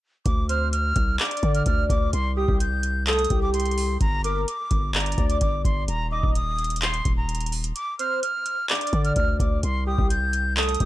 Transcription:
0.26 D2 D6, kick, closed hi-hat
0.49 C5 F6, closed hi-hat
0.73 F6, closed hi-hat
0.96 C2, kick, closed hi-hat
1.19 D5 D6, clap, closed hi-hat
1.25 closed hi-hat
1.31 closed hi-hat
1.37 closed hi-hat
1.43 D3, kick, closed hi-hat
1.55 F6, closed hi-hat
1.66 D2 F6, kick, closed hi-hat
1.90 D2 D6, kick, closed hi-hat
2.13 C2 C6, closed hi-hat
2.37 G4 D#6
2.48 C2, kick
2.60 G6, closed hi-hat
2.83 closed hi-hat
3.07 A4 D#6, clap, closed hi-hat
3.13 closed hi-hat
3.19 closed hi-hat
3.25 closed hi-hat
3.30 C2 G4, kick, closed hi-hat
3.42 D6
3.54 C6, closed hi-hat
3.60 closed hi-hat
3.66 closed hi-hat
3.71 closed hi-hat
3.78 open hi-hat
4.01 G1 A#5, kick, closed hi-hat
4.24 A#4 D6, closed hi-hat
4.48 D6, closed hi-hat
4.71 G1, kick, closed hi-hat
4.94 D5 A#5, clap, closed hi-hat
5.00 closed hi-hat
5.06 closed hi-hat
5.12 closed hi-hat
5.18 D2, kick, closed hi-hat
5.30 D6, closed hi-hat
5.41 G1 D6, kick, closed hi-hat
5.65 G1 C6, kick, closed hi-hat
5.88 D#1 A#5, closed hi-hat
6.12 D#5 D6
6.23 D#1, kick
6.35 D#6, closed hi-hat
6.59 closed hi-hat
6.64 closed hi-hat
6.70 closed hi-hat
6.76 closed hi-hat
6.82 C6, clap, closed hi-hat
6.94 closed hi-hat
7.05 D#1, kick, closed hi-hat
7.17 A#5
7.29 closed hi-hat
7.35 closed hi-hat
7.41 closed hi-hat
7.46 closed hi-hat
7.52 closed hi-hat, open hi-hat
7.64 closed hi-hat
7.76 D6, closed hi-hat
7.99 C5 F6, closed hi-hat
8.23 F6, closed hi-hat
8.46 closed hi-hat
8.69 D5 D6, clap, closed hi-hat
8.75 closed hi-hat
8.81 closed hi-hat
8.87 closed hi-hat
8.93 D3, kick, closed hi-hat
9.05 F6, closed hi-hat
9.16 D2 F6, kick, closed hi-hat
9.40 D2 D6, kick, closed hi-hat
9.63 C2 C6, closed hi-hat
9.87 G4 D#6
9.98 C2, kick
10.10 G6, closed hi-hat
10.33 closed hi-hat
10.57 A4 D#6, clap, closed hi-hat
10.63 closed hi-hat
10.69 closed hi-hat
10.74 closed hi-hat
10.80 C2 G4, kick, closed hi-hat

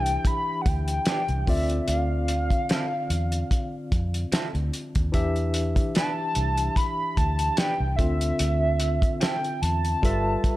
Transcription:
Already playing: C2 E3 D4 G4 E5 A5
0.03 G5, closed hi-hat
0.25 B5, kick, closed hi-hat
0.61 F#5
0.66 D2 G5, kick, closed hi-hat
0.88 closed hi-hat
1.06 E3 B3 D4 G4, snare, closed hi-hat
1.28 C2, closed hi-hat
1.46 D2 D3 C4 F4 D5 E5, kick, open hi-hat
1.70 closed hi-hat
1.88 D2 F5, closed hi-hat
2.28 closed hi-hat
2.50 kick, closed hi-hat
2.69 F3 C4 E4 A4, snare, closed hi-hat
3.10 E2, closed hi-hat
3.32 closed hi-hat
3.51 kick, closed hi-hat
3.92 F2, kick, closed hi-hat
4.14 closed hi-hat
4.32 F3 C4 E4 A4, muted fingered electric bass stroke, snare, closed hi-hat
4.55 D2, closed hi-hat
4.73 closed hi-hat
4.95 D#2, kick, closed hi-hat
5.12 E2 E3 D4 G4 E5, kick, closed hi-hat
5.36 closed hi-hat
5.54 closed hi-hat
5.76 kick, closed hi-hat
5.95 B3 D4 G4 B4 A5, snare, closed hi-hat
6.35 C2, closed hi-hat
6.57 closed hi-hat
6.76 B5, kick, closed hi-hat
7.17 D2 A5, kick, closed hi-hat
7.39 closed hi-hat
7.57 B3 D4 G4 B4 G5, snare, closed hi-hat
7.80 C2
7.96 D2 D3 C4 F4 E5, kick, closed hi-hat
8.01 E5
8.21 closed hi-hat
8.39 D2, closed hi-hat
8.80 closed hi-hat
9.02 kick, closed hi-hat
9.20 F3 C4 E4 A4 G5, snare, closed hi-hat
9.44 closed hi-hat
9.62 E2 A5, closed hi-hat
9.85 closed hi-hat
10.02 G1 G3 F4 A4 B4 E5, kick, closed hi-hat
10.44 muted fingered electric bass stroke, kick, closed hi-hat

